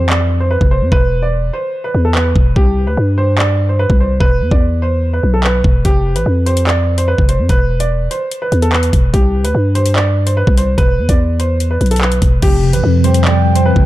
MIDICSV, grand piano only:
0, 0, Header, 1, 2, 480
1, 0, Start_track
1, 0, Tempo, 410959
1, 1072, Time_signature, 4, 2, 24, 8
1, 16185, End_track
2, 0, Start_track
2, 0, Title_t, "Grand piano"
2, 0, Program_c, 0, 0
2, 112, Note_on_c, 0, 74, 78
2, 450, Note_off_c, 0, 74, 0
2, 471, Note_on_c, 0, 72, 75
2, 564, Note_off_c, 0, 72, 0
2, 591, Note_on_c, 0, 71, 85
2, 775, Note_off_c, 0, 71, 0
2, 832, Note_on_c, 0, 72, 82
2, 1016, Note_off_c, 0, 72, 0
2, 1075, Note_on_c, 0, 71, 102
2, 1412, Note_off_c, 0, 71, 0
2, 1430, Note_on_c, 0, 74, 80
2, 1770, Note_off_c, 0, 74, 0
2, 1791, Note_on_c, 0, 72, 81
2, 2130, Note_off_c, 0, 72, 0
2, 2152, Note_on_c, 0, 71, 81
2, 2336, Note_off_c, 0, 71, 0
2, 2392, Note_on_c, 0, 69, 80
2, 2484, Note_off_c, 0, 69, 0
2, 2513, Note_on_c, 0, 71, 79
2, 2964, Note_off_c, 0, 71, 0
2, 2991, Note_on_c, 0, 67, 99
2, 3330, Note_off_c, 0, 67, 0
2, 3353, Note_on_c, 0, 71, 80
2, 3691, Note_off_c, 0, 71, 0
2, 3711, Note_on_c, 0, 72, 90
2, 3895, Note_off_c, 0, 72, 0
2, 3953, Note_on_c, 0, 74, 86
2, 4291, Note_off_c, 0, 74, 0
2, 4311, Note_on_c, 0, 72, 72
2, 4403, Note_off_c, 0, 72, 0
2, 4431, Note_on_c, 0, 71, 87
2, 4616, Note_off_c, 0, 71, 0
2, 4677, Note_on_c, 0, 72, 77
2, 4859, Note_off_c, 0, 72, 0
2, 4909, Note_on_c, 0, 71, 108
2, 5249, Note_off_c, 0, 71, 0
2, 5274, Note_on_c, 0, 74, 78
2, 5611, Note_off_c, 0, 74, 0
2, 5631, Note_on_c, 0, 72, 80
2, 5970, Note_off_c, 0, 72, 0
2, 5997, Note_on_c, 0, 71, 78
2, 6179, Note_off_c, 0, 71, 0
2, 6233, Note_on_c, 0, 69, 77
2, 6325, Note_off_c, 0, 69, 0
2, 6354, Note_on_c, 0, 71, 78
2, 6804, Note_off_c, 0, 71, 0
2, 6834, Note_on_c, 0, 67, 106
2, 7172, Note_off_c, 0, 67, 0
2, 7192, Note_on_c, 0, 71, 78
2, 7530, Note_off_c, 0, 71, 0
2, 7548, Note_on_c, 0, 72, 86
2, 7734, Note_off_c, 0, 72, 0
2, 7790, Note_on_c, 0, 74, 79
2, 8129, Note_off_c, 0, 74, 0
2, 8152, Note_on_c, 0, 72, 76
2, 8244, Note_off_c, 0, 72, 0
2, 8268, Note_on_c, 0, 71, 88
2, 8453, Note_off_c, 0, 71, 0
2, 8512, Note_on_c, 0, 72, 81
2, 8696, Note_off_c, 0, 72, 0
2, 8755, Note_on_c, 0, 71, 105
2, 9092, Note_off_c, 0, 71, 0
2, 9111, Note_on_c, 0, 74, 81
2, 9450, Note_off_c, 0, 74, 0
2, 9471, Note_on_c, 0, 72, 80
2, 9810, Note_off_c, 0, 72, 0
2, 9833, Note_on_c, 0, 71, 79
2, 10016, Note_off_c, 0, 71, 0
2, 10072, Note_on_c, 0, 69, 81
2, 10164, Note_off_c, 0, 69, 0
2, 10191, Note_on_c, 0, 71, 78
2, 10643, Note_off_c, 0, 71, 0
2, 10670, Note_on_c, 0, 67, 95
2, 11009, Note_off_c, 0, 67, 0
2, 11030, Note_on_c, 0, 71, 83
2, 11369, Note_off_c, 0, 71, 0
2, 11389, Note_on_c, 0, 72, 90
2, 11574, Note_off_c, 0, 72, 0
2, 11630, Note_on_c, 0, 74, 84
2, 11969, Note_off_c, 0, 74, 0
2, 11990, Note_on_c, 0, 72, 73
2, 12083, Note_off_c, 0, 72, 0
2, 12111, Note_on_c, 0, 71, 85
2, 12296, Note_off_c, 0, 71, 0
2, 12353, Note_on_c, 0, 72, 79
2, 12537, Note_off_c, 0, 72, 0
2, 12589, Note_on_c, 0, 71, 108
2, 12929, Note_off_c, 0, 71, 0
2, 12951, Note_on_c, 0, 74, 78
2, 13290, Note_off_c, 0, 74, 0
2, 13310, Note_on_c, 0, 72, 81
2, 13649, Note_off_c, 0, 72, 0
2, 13673, Note_on_c, 0, 71, 76
2, 13857, Note_off_c, 0, 71, 0
2, 13912, Note_on_c, 0, 69, 79
2, 14004, Note_off_c, 0, 69, 0
2, 14032, Note_on_c, 0, 71, 75
2, 14483, Note_off_c, 0, 71, 0
2, 14513, Note_on_c, 0, 67, 112
2, 14851, Note_off_c, 0, 67, 0
2, 14872, Note_on_c, 0, 71, 82
2, 15211, Note_off_c, 0, 71, 0
2, 15233, Note_on_c, 0, 72, 91
2, 15417, Note_off_c, 0, 72, 0
2, 15472, Note_on_c, 0, 74, 82
2, 15811, Note_off_c, 0, 74, 0
2, 15832, Note_on_c, 0, 72, 80
2, 15924, Note_off_c, 0, 72, 0
2, 15950, Note_on_c, 0, 71, 89
2, 16135, Note_off_c, 0, 71, 0
2, 16185, End_track
0, 0, End_of_file